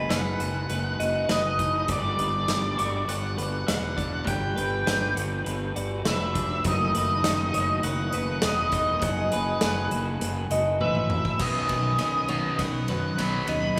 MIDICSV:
0, 0, Header, 1, 8, 480
1, 0, Start_track
1, 0, Tempo, 594648
1, 1529, Time_signature, 4, 2, 24, 8
1, 11136, End_track
2, 0, Start_track
2, 0, Title_t, "Lead electric guitar"
2, 0, Program_c, 0, 29
2, 0, Note_on_c, 0, 83, 81
2, 75, Note_on_c, 0, 78, 72
2, 91, Note_off_c, 0, 83, 0
2, 1060, Note_on_c, 0, 75, 66
2, 1071, Note_off_c, 0, 78, 0
2, 1539, Note_off_c, 0, 75, 0
2, 1542, Note_on_c, 0, 74, 80
2, 2494, Note_on_c, 0, 78, 80
2, 2526, Note_off_c, 0, 74, 0
2, 2960, Note_off_c, 0, 78, 0
2, 2970, Note_on_c, 0, 78, 73
2, 3419, Note_off_c, 0, 78, 0
2, 3450, Note_on_c, 0, 79, 79
2, 4140, Note_off_c, 0, 79, 0
2, 4899, Note_on_c, 0, 76, 74
2, 5344, Note_off_c, 0, 76, 0
2, 5391, Note_on_c, 0, 75, 89
2, 6329, Note_on_c, 0, 78, 100
2, 6370, Note_off_c, 0, 75, 0
2, 6814, Note_on_c, 0, 75, 84
2, 6824, Note_off_c, 0, 78, 0
2, 7284, Note_on_c, 0, 78, 93
2, 7306, Note_off_c, 0, 75, 0
2, 7974, Note_off_c, 0, 78, 0
2, 8727, Note_on_c, 0, 76, 88
2, 9204, Note_off_c, 0, 76, 0
2, 9207, Note_on_c, 0, 75, 75
2, 10171, Note_on_c, 0, 78, 79
2, 10194, Note_off_c, 0, 75, 0
2, 10641, Note_on_c, 0, 83, 80
2, 10662, Note_off_c, 0, 78, 0
2, 11136, Note_off_c, 0, 83, 0
2, 11136, End_track
3, 0, Start_track
3, 0, Title_t, "Clean electric guitar"
3, 0, Program_c, 1, 27
3, 0, Note_on_c, 1, 71, 62
3, 80, Note_off_c, 1, 71, 0
3, 80, Note_on_c, 1, 71, 73
3, 805, Note_on_c, 1, 75, 63
3, 1042, Note_off_c, 1, 75, 0
3, 1045, Note_off_c, 1, 71, 0
3, 1045, Note_on_c, 1, 71, 71
3, 1931, Note_off_c, 1, 71, 0
3, 2247, Note_on_c, 1, 85, 74
3, 2726, Note_on_c, 1, 71, 75
3, 2730, Note_off_c, 1, 85, 0
3, 3201, Note_on_c, 1, 74, 70
3, 3684, Note_off_c, 1, 74, 0
3, 3687, Note_off_c, 1, 71, 0
3, 3687, Note_on_c, 1, 71, 67
3, 3927, Note_off_c, 1, 71, 0
3, 3927, Note_on_c, 1, 71, 77
3, 4650, Note_on_c, 1, 74, 75
3, 4884, Note_off_c, 1, 74, 0
3, 4887, Note_off_c, 1, 71, 0
3, 4887, Note_on_c, 1, 71, 72
3, 5774, Note_off_c, 1, 71, 0
3, 6089, Note_on_c, 1, 73, 79
3, 6567, Note_on_c, 1, 71, 77
3, 6570, Note_off_c, 1, 73, 0
3, 7050, Note_on_c, 1, 75, 75
3, 7523, Note_off_c, 1, 75, 0
3, 7526, Note_off_c, 1, 71, 0
3, 7526, Note_on_c, 1, 71, 72
3, 7750, Note_off_c, 1, 71, 0
3, 7759, Note_on_c, 1, 71, 78
3, 8244, Note_off_c, 1, 71, 0
3, 8488, Note_on_c, 1, 75, 77
3, 8721, Note_off_c, 1, 75, 0
3, 8725, Note_on_c, 1, 71, 85
3, 9205, Note_off_c, 1, 71, 0
3, 9921, Note_on_c, 1, 73, 65
3, 10403, Note_off_c, 1, 73, 0
3, 10407, Note_on_c, 1, 71, 72
3, 10887, Note_on_c, 1, 75, 60
3, 11136, Note_off_c, 1, 71, 0
3, 11136, Note_off_c, 1, 75, 0
3, 11136, End_track
4, 0, Start_track
4, 0, Title_t, "Clean electric guitar"
4, 0, Program_c, 2, 27
4, 0, Note_on_c, 2, 54, 60
4, 0, Note_on_c, 2, 59, 63
4, 0, Note_on_c, 2, 66, 60
4, 0, Note_on_c, 2, 71, 59
4, 79, Note_on_c, 2, 63, 56
4, 265, Note_off_c, 2, 59, 0
4, 322, Note_off_c, 2, 66, 0
4, 325, Note_on_c, 2, 66, 55
4, 559, Note_off_c, 2, 71, 0
4, 562, Note_on_c, 2, 71, 66
4, 801, Note_off_c, 2, 66, 0
4, 804, Note_on_c, 2, 66, 62
4, 1035, Note_off_c, 2, 71, 0
4, 1038, Note_on_c, 2, 71, 64
4, 1273, Note_off_c, 2, 63, 0
4, 1283, Note_on_c, 2, 63, 63
4, 1517, Note_off_c, 2, 54, 0
4, 1520, Note_on_c, 2, 55, 65
4, 1526, Note_off_c, 2, 63, 0
4, 1544, Note_off_c, 2, 66, 0
4, 1763, Note_off_c, 2, 71, 0
4, 1767, Note_on_c, 2, 71, 64
4, 2007, Note_on_c, 2, 62, 62
4, 2245, Note_on_c, 2, 66, 62
4, 2480, Note_off_c, 2, 71, 0
4, 2483, Note_on_c, 2, 71, 64
4, 2727, Note_off_c, 2, 55, 0
4, 2965, Note_off_c, 2, 71, 0
4, 2968, Note_on_c, 2, 71, 64
4, 3190, Note_off_c, 2, 62, 0
4, 3200, Note_on_c, 2, 62, 62
4, 3437, Note_on_c, 2, 55, 64
4, 3461, Note_off_c, 2, 66, 0
4, 3680, Note_off_c, 2, 71, 0
4, 3683, Note_on_c, 2, 71, 67
4, 3914, Note_off_c, 2, 62, 0
4, 3924, Note_on_c, 2, 62, 65
4, 4161, Note_on_c, 2, 66, 63
4, 4393, Note_off_c, 2, 71, 0
4, 4396, Note_on_c, 2, 71, 73
4, 4643, Note_off_c, 2, 66, 0
4, 4646, Note_off_c, 2, 55, 0
4, 4647, Note_on_c, 2, 66, 65
4, 4878, Note_off_c, 2, 71, 0
4, 4881, Note_on_c, 2, 71, 64
4, 5108, Note_off_c, 2, 62, 0
4, 5117, Note_on_c, 2, 62, 69
4, 5364, Note_on_c, 2, 54, 70
4, 5366, Note_off_c, 2, 62, 0
4, 5606, Note_off_c, 2, 71, 0
4, 5610, Note_on_c, 2, 71, 65
4, 5845, Note_on_c, 2, 63, 60
4, 6081, Note_off_c, 2, 66, 0
4, 6085, Note_on_c, 2, 66, 65
4, 6320, Note_off_c, 2, 71, 0
4, 6324, Note_on_c, 2, 71, 77
4, 6567, Note_off_c, 2, 66, 0
4, 6570, Note_on_c, 2, 66, 59
4, 6790, Note_off_c, 2, 71, 0
4, 6799, Note_on_c, 2, 71, 70
4, 7039, Note_off_c, 2, 63, 0
4, 7042, Note_on_c, 2, 63, 75
4, 7280, Note_off_c, 2, 54, 0
4, 7283, Note_on_c, 2, 54, 70
4, 7517, Note_off_c, 2, 71, 0
4, 7527, Note_on_c, 2, 71, 68
4, 7769, Note_off_c, 2, 66, 0
4, 8009, Note_on_c, 2, 66, 65
4, 8238, Note_off_c, 2, 71, 0
4, 8244, Note_off_c, 2, 63, 0
4, 8247, Note_on_c, 2, 71, 73
4, 8477, Note_off_c, 2, 66, 0
4, 8485, Note_off_c, 2, 54, 0
4, 8487, Note_on_c, 2, 66, 67
4, 8718, Note_off_c, 2, 71, 0
4, 8728, Note_on_c, 2, 71, 72
4, 9204, Note_on_c, 2, 47, 62
4, 9206, Note_off_c, 2, 66, 0
4, 9207, Note_off_c, 2, 71, 0
4, 9443, Note_on_c, 2, 59, 48
4, 9672, Note_on_c, 2, 61, 60
4, 9923, Note_on_c, 2, 51, 58
4, 10157, Note_off_c, 2, 59, 0
4, 10160, Note_on_c, 2, 59, 64
4, 10393, Note_off_c, 2, 51, 0
4, 10402, Note_on_c, 2, 51, 53
4, 10403, Note_off_c, 2, 47, 0
4, 10641, Note_off_c, 2, 59, 0
4, 10644, Note_on_c, 2, 59, 61
4, 10873, Note_off_c, 2, 61, 0
4, 10883, Note_on_c, 2, 61, 58
4, 11117, Note_off_c, 2, 51, 0
4, 11123, Note_off_c, 2, 61, 0
4, 11136, Note_off_c, 2, 59, 0
4, 11136, End_track
5, 0, Start_track
5, 0, Title_t, "Pedal steel guitar"
5, 0, Program_c, 3, 26
5, 0, Note_on_c, 3, 51, 56
5, 0, Note_on_c, 3, 56, 62
5, 0, Note_on_c, 3, 57, 53
5, 0, Note_on_c, 3, 59, 50
5, 1500, Note_off_c, 3, 57, 0
5, 1502, Note_off_c, 3, 51, 0
5, 1507, Note_off_c, 3, 56, 0
5, 1535, Note_on_c, 3, 50, 59
5, 1537, Note_on_c, 3, 55, 51
5, 5344, Note_off_c, 3, 55, 0
5, 5346, Note_off_c, 3, 50, 0
5, 5364, Note_on_c, 3, 51, 57
5, 5368, Note_on_c, 3, 57, 57
5, 7289, Note_on_c, 3, 68, 73
5, 9170, Note_off_c, 3, 51, 0
5, 9171, Note_off_c, 3, 57, 0
5, 9179, Note_off_c, 3, 59, 0
5, 9187, Note_off_c, 3, 68, 0
5, 9197, Note_on_c, 3, 66, 57
5, 9202, Note_on_c, 3, 59, 43
5, 9205, Note_on_c, 3, 61, 50
5, 9207, Note_on_c, 3, 51, 50
5, 11100, Note_off_c, 3, 66, 0
5, 11105, Note_off_c, 3, 51, 0
5, 11106, Note_on_c, 3, 64, 55
5, 11136, Note_off_c, 3, 59, 0
5, 11136, Note_off_c, 3, 61, 0
5, 11136, Note_off_c, 3, 64, 0
5, 11136, End_track
6, 0, Start_track
6, 0, Title_t, "Distorted electric guitar"
6, 0, Program_c, 4, 30
6, 9210, Note_on_c, 4, 47, 73
6, 9211, Note_on_c, 4, 54, 67
6, 9213, Note_on_c, 4, 59, 75
6, 9434, Note_off_c, 4, 47, 0
6, 9434, Note_off_c, 4, 54, 0
6, 9435, Note_off_c, 4, 59, 0
6, 9443, Note_on_c, 4, 54, 56
6, 9444, Note_on_c, 4, 47, 48
6, 9660, Note_off_c, 4, 54, 0
6, 9661, Note_off_c, 4, 47, 0
6, 9678, Note_on_c, 4, 47, 63
6, 9683, Note_on_c, 4, 54, 71
6, 9898, Note_off_c, 4, 47, 0
6, 9900, Note_off_c, 4, 54, 0
6, 9917, Note_on_c, 4, 47, 73
6, 9923, Note_on_c, 4, 54, 78
6, 9925, Note_on_c, 4, 59, 88
6, 10147, Note_off_c, 4, 47, 0
6, 10150, Note_off_c, 4, 54, 0
6, 10150, Note_off_c, 4, 59, 0
6, 10165, Note_on_c, 4, 47, 63
6, 10169, Note_on_c, 4, 54, 60
6, 10381, Note_off_c, 4, 47, 0
6, 10383, Note_off_c, 4, 54, 0
6, 10402, Note_on_c, 4, 47, 55
6, 10409, Note_on_c, 4, 54, 69
6, 10619, Note_off_c, 4, 47, 0
6, 10623, Note_off_c, 4, 54, 0
6, 10640, Note_on_c, 4, 47, 74
6, 10645, Note_on_c, 4, 54, 77
6, 10647, Note_on_c, 4, 59, 83
6, 10867, Note_off_c, 4, 47, 0
6, 10870, Note_off_c, 4, 54, 0
6, 10871, Note_off_c, 4, 59, 0
6, 10880, Note_on_c, 4, 47, 55
6, 10884, Note_on_c, 4, 54, 61
6, 11098, Note_off_c, 4, 47, 0
6, 11100, Note_off_c, 4, 54, 0
6, 11136, End_track
7, 0, Start_track
7, 0, Title_t, "Fingered electric bass"
7, 0, Program_c, 5, 33
7, 78, Note_on_c, 5, 30, 77
7, 309, Note_off_c, 5, 30, 0
7, 322, Note_on_c, 5, 30, 77
7, 551, Note_off_c, 5, 30, 0
7, 562, Note_on_c, 5, 30, 78
7, 792, Note_off_c, 5, 30, 0
7, 803, Note_on_c, 5, 30, 74
7, 1033, Note_off_c, 5, 30, 0
7, 1041, Note_on_c, 5, 30, 78
7, 1500, Note_off_c, 5, 30, 0
7, 1525, Note_on_c, 5, 31, 92
7, 1754, Note_off_c, 5, 31, 0
7, 1767, Note_on_c, 5, 31, 77
7, 1996, Note_off_c, 5, 31, 0
7, 2015, Note_on_c, 5, 31, 81
7, 2240, Note_off_c, 5, 31, 0
7, 2251, Note_on_c, 5, 31, 82
7, 2478, Note_off_c, 5, 31, 0
7, 2486, Note_on_c, 5, 31, 82
7, 2716, Note_off_c, 5, 31, 0
7, 2736, Note_on_c, 5, 31, 77
7, 2961, Note_off_c, 5, 31, 0
7, 2971, Note_on_c, 5, 28, 81
7, 3427, Note_off_c, 5, 28, 0
7, 3449, Note_on_c, 5, 31, 86
7, 3678, Note_off_c, 5, 31, 0
7, 3691, Note_on_c, 5, 31, 81
7, 3920, Note_off_c, 5, 31, 0
7, 3929, Note_on_c, 5, 31, 78
7, 4159, Note_off_c, 5, 31, 0
7, 4168, Note_on_c, 5, 31, 83
7, 4398, Note_off_c, 5, 31, 0
7, 4408, Note_on_c, 5, 31, 76
7, 4638, Note_off_c, 5, 31, 0
7, 4646, Note_on_c, 5, 31, 81
7, 4877, Note_off_c, 5, 31, 0
7, 4889, Note_on_c, 5, 29, 80
7, 5346, Note_off_c, 5, 29, 0
7, 5368, Note_on_c, 5, 30, 97
7, 5598, Note_off_c, 5, 30, 0
7, 5617, Note_on_c, 5, 30, 78
7, 5842, Note_off_c, 5, 30, 0
7, 5852, Note_on_c, 5, 30, 88
7, 6080, Note_off_c, 5, 30, 0
7, 6091, Note_on_c, 5, 30, 84
7, 6319, Note_off_c, 5, 30, 0
7, 6324, Note_on_c, 5, 30, 78
7, 6555, Note_off_c, 5, 30, 0
7, 6572, Note_on_c, 5, 30, 77
7, 6799, Note_off_c, 5, 30, 0
7, 6805, Note_on_c, 5, 28, 88
7, 7262, Note_off_c, 5, 28, 0
7, 7284, Note_on_c, 5, 30, 93
7, 7515, Note_off_c, 5, 30, 0
7, 7531, Note_on_c, 5, 30, 78
7, 7758, Note_off_c, 5, 30, 0
7, 7761, Note_on_c, 5, 30, 87
7, 7992, Note_off_c, 5, 30, 0
7, 8000, Note_on_c, 5, 30, 93
7, 8231, Note_off_c, 5, 30, 0
7, 8242, Note_on_c, 5, 30, 81
7, 8470, Note_off_c, 5, 30, 0
7, 8475, Note_on_c, 5, 30, 79
7, 8708, Note_off_c, 5, 30, 0
7, 8721, Note_on_c, 5, 33, 86
7, 9178, Note_off_c, 5, 33, 0
7, 9199, Note_on_c, 5, 35, 77
7, 9371, Note_off_c, 5, 35, 0
7, 9443, Note_on_c, 5, 35, 69
7, 9613, Note_off_c, 5, 35, 0
7, 9694, Note_on_c, 5, 35, 78
7, 10030, Note_off_c, 5, 35, 0
7, 10163, Note_on_c, 5, 35, 71
7, 10333, Note_off_c, 5, 35, 0
7, 10407, Note_on_c, 5, 42, 68
7, 10576, Note_off_c, 5, 42, 0
7, 10648, Note_on_c, 5, 35, 80
7, 10816, Note_off_c, 5, 35, 0
7, 10882, Note_on_c, 5, 39, 67
7, 11052, Note_off_c, 5, 39, 0
7, 11136, End_track
8, 0, Start_track
8, 0, Title_t, "Drums"
8, 85, Note_on_c, 9, 38, 92
8, 85, Note_on_c, 9, 42, 80
8, 165, Note_off_c, 9, 38, 0
8, 165, Note_off_c, 9, 42, 0
8, 323, Note_on_c, 9, 42, 60
8, 404, Note_off_c, 9, 42, 0
8, 562, Note_on_c, 9, 42, 80
8, 643, Note_off_c, 9, 42, 0
8, 809, Note_on_c, 9, 42, 59
8, 890, Note_off_c, 9, 42, 0
8, 1044, Note_on_c, 9, 38, 101
8, 1044, Note_on_c, 9, 42, 79
8, 1125, Note_off_c, 9, 38, 0
8, 1125, Note_off_c, 9, 42, 0
8, 1284, Note_on_c, 9, 36, 79
8, 1285, Note_on_c, 9, 42, 65
8, 1365, Note_off_c, 9, 36, 0
8, 1365, Note_off_c, 9, 42, 0
8, 1520, Note_on_c, 9, 42, 82
8, 1524, Note_on_c, 9, 36, 107
8, 1601, Note_off_c, 9, 42, 0
8, 1605, Note_off_c, 9, 36, 0
8, 1767, Note_on_c, 9, 42, 63
8, 1848, Note_off_c, 9, 42, 0
8, 2005, Note_on_c, 9, 38, 91
8, 2005, Note_on_c, 9, 42, 88
8, 2085, Note_off_c, 9, 38, 0
8, 2085, Note_off_c, 9, 42, 0
8, 2250, Note_on_c, 9, 42, 61
8, 2331, Note_off_c, 9, 42, 0
8, 2492, Note_on_c, 9, 42, 82
8, 2573, Note_off_c, 9, 42, 0
8, 2732, Note_on_c, 9, 42, 71
8, 2813, Note_off_c, 9, 42, 0
8, 2973, Note_on_c, 9, 38, 105
8, 2973, Note_on_c, 9, 42, 97
8, 3054, Note_off_c, 9, 38, 0
8, 3054, Note_off_c, 9, 42, 0
8, 3210, Note_on_c, 9, 36, 80
8, 3217, Note_on_c, 9, 42, 70
8, 3291, Note_off_c, 9, 36, 0
8, 3298, Note_off_c, 9, 42, 0
8, 3448, Note_on_c, 9, 42, 84
8, 3449, Note_on_c, 9, 36, 98
8, 3528, Note_off_c, 9, 42, 0
8, 3530, Note_off_c, 9, 36, 0
8, 3693, Note_on_c, 9, 42, 59
8, 3774, Note_off_c, 9, 42, 0
8, 3933, Note_on_c, 9, 38, 102
8, 3933, Note_on_c, 9, 42, 80
8, 4014, Note_off_c, 9, 38, 0
8, 4014, Note_off_c, 9, 42, 0
8, 4175, Note_on_c, 9, 42, 66
8, 4256, Note_off_c, 9, 42, 0
8, 4410, Note_on_c, 9, 42, 78
8, 4491, Note_off_c, 9, 42, 0
8, 4651, Note_on_c, 9, 42, 64
8, 4732, Note_off_c, 9, 42, 0
8, 4887, Note_on_c, 9, 38, 104
8, 4887, Note_on_c, 9, 42, 78
8, 4968, Note_off_c, 9, 38, 0
8, 4968, Note_off_c, 9, 42, 0
8, 5129, Note_on_c, 9, 36, 88
8, 5129, Note_on_c, 9, 42, 65
8, 5210, Note_off_c, 9, 36, 0
8, 5210, Note_off_c, 9, 42, 0
8, 5364, Note_on_c, 9, 42, 85
8, 5368, Note_on_c, 9, 36, 102
8, 5445, Note_off_c, 9, 42, 0
8, 5449, Note_off_c, 9, 36, 0
8, 5608, Note_on_c, 9, 42, 66
8, 5689, Note_off_c, 9, 42, 0
8, 5845, Note_on_c, 9, 38, 106
8, 5845, Note_on_c, 9, 42, 90
8, 5926, Note_off_c, 9, 38, 0
8, 5926, Note_off_c, 9, 42, 0
8, 6087, Note_on_c, 9, 42, 67
8, 6168, Note_off_c, 9, 42, 0
8, 6322, Note_on_c, 9, 42, 87
8, 6403, Note_off_c, 9, 42, 0
8, 6559, Note_on_c, 9, 42, 65
8, 6640, Note_off_c, 9, 42, 0
8, 6795, Note_on_c, 9, 38, 112
8, 6795, Note_on_c, 9, 42, 98
8, 6876, Note_off_c, 9, 38, 0
8, 6876, Note_off_c, 9, 42, 0
8, 7038, Note_on_c, 9, 42, 72
8, 7044, Note_on_c, 9, 36, 85
8, 7119, Note_off_c, 9, 42, 0
8, 7125, Note_off_c, 9, 36, 0
8, 7279, Note_on_c, 9, 42, 86
8, 7284, Note_on_c, 9, 36, 106
8, 7360, Note_off_c, 9, 42, 0
8, 7364, Note_off_c, 9, 36, 0
8, 7521, Note_on_c, 9, 42, 68
8, 7602, Note_off_c, 9, 42, 0
8, 7757, Note_on_c, 9, 38, 108
8, 7757, Note_on_c, 9, 42, 93
8, 7838, Note_off_c, 9, 38, 0
8, 7838, Note_off_c, 9, 42, 0
8, 8001, Note_on_c, 9, 42, 64
8, 8082, Note_off_c, 9, 42, 0
8, 8244, Note_on_c, 9, 42, 86
8, 8325, Note_off_c, 9, 42, 0
8, 8481, Note_on_c, 9, 42, 65
8, 8562, Note_off_c, 9, 42, 0
8, 8723, Note_on_c, 9, 48, 60
8, 8804, Note_off_c, 9, 48, 0
8, 8839, Note_on_c, 9, 47, 57
8, 8920, Note_off_c, 9, 47, 0
8, 8959, Note_on_c, 9, 45, 90
8, 9039, Note_off_c, 9, 45, 0
8, 9081, Note_on_c, 9, 36, 81
8, 9162, Note_off_c, 9, 36, 0
8, 9196, Note_on_c, 9, 38, 44
8, 9196, Note_on_c, 9, 49, 99
8, 9201, Note_on_c, 9, 36, 94
8, 9277, Note_off_c, 9, 38, 0
8, 9277, Note_off_c, 9, 49, 0
8, 9282, Note_off_c, 9, 36, 0
8, 9436, Note_on_c, 9, 51, 63
8, 9440, Note_on_c, 9, 36, 68
8, 9517, Note_off_c, 9, 51, 0
8, 9521, Note_off_c, 9, 36, 0
8, 9675, Note_on_c, 9, 38, 45
8, 9675, Note_on_c, 9, 51, 80
8, 9756, Note_off_c, 9, 38, 0
8, 9756, Note_off_c, 9, 51, 0
8, 9916, Note_on_c, 9, 51, 63
8, 9997, Note_off_c, 9, 51, 0
8, 10161, Note_on_c, 9, 36, 67
8, 10162, Note_on_c, 9, 38, 43
8, 10162, Note_on_c, 9, 51, 81
8, 10242, Note_off_c, 9, 36, 0
8, 10242, Note_off_c, 9, 38, 0
8, 10242, Note_off_c, 9, 51, 0
8, 10397, Note_on_c, 9, 51, 62
8, 10478, Note_off_c, 9, 51, 0
8, 10643, Note_on_c, 9, 38, 49
8, 10643, Note_on_c, 9, 51, 84
8, 10724, Note_off_c, 9, 38, 0
8, 10724, Note_off_c, 9, 51, 0
8, 10877, Note_on_c, 9, 51, 71
8, 10958, Note_off_c, 9, 51, 0
8, 11136, End_track
0, 0, End_of_file